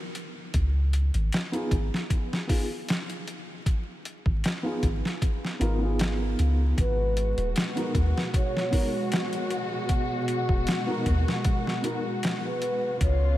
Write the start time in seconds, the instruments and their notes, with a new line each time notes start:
0.15 closed hi-hat
0.54 808-style bass C#2, kick, closed hi-hat
0.93 closed hi-hat
1.14 808-style bass G#1, closed hi-hat
1.32 snare, closed hi-hat
1.52 felt piano B3 D#4 F4 G#4, closed hi-hat
1.71 808-style bass G#1, kick, closed hi-hat
1.94 snare
2.10 kick, closed hi-hat
2.33 snare
2.47 felt piano B3 D#4 F4 G#4, kick, open hi-hat
2.88 snare, closed hi-hat
3.10 closed hi-hat
3.27 closed hi-hat
3.66 kick, closed hi-hat
4.05 closed hi-hat
4.26 808-style bass G#1, kick
4.44 snare, closed hi-hat
4.63 felt piano B3 D#4 F4 G#4
4.83 808-style bass G#1, kick, closed hi-hat
5.05 snare
5.22 kick, closed hi-hat
5.45 snare
5.59 808-style bass G#1, felt piano B3 D#4 F4 A#4, closed hi-hat
5.78 felt piano B3 D#4
5.83 felt piano F4 G#4
5.99 snare, closed hi-hat
6.39 808-style bass C#2, closed hi-hat
6.77 808-style bass G#1, string section B2 G#3 F#4, soft synth lead B4, kick, closed hi-hat
7.17 closed hi-hat
7.37 808-style bass D#1, closed hi-hat
7.56 snare, closed hi-hat
7.75 felt piano B3 D#4 F#4 A#4, closed hi-hat
7.95 808-style bass D#2, kick, closed hi-hat
8.18 snare
8.34 soft synth lead C#5, kick, closed hi-hat
8.57 snare
8.71 felt piano B3 D#4 F#4 A#4, kick, open hi-hat
9.12 snare, closed hi-hat
9.33 closed hi-hat
9.51 closed hi-hat
9.89 kick, closed hi-hat
10.28 closed hi-hat
10.49 808-style bass D#1, kick
10.67 snare, closed hi-hat
10.86 felt piano B3 D#4 F#4 A#4
11.06 808-style bass D#2, kick, closed hi-hat
11.28 snare
11.45 kick, closed hi-hat
11.67 snare
11.82 felt piano B3 D#4 F#4 A#4, closed hi-hat
12.23 snare, closed hi-hat
12.45 soft synth lead B4
12.62 closed hi-hat
13.00 808-style bass C#2, string section C#3 B3 F4, soft synth lead C#5, kick, closed hi-hat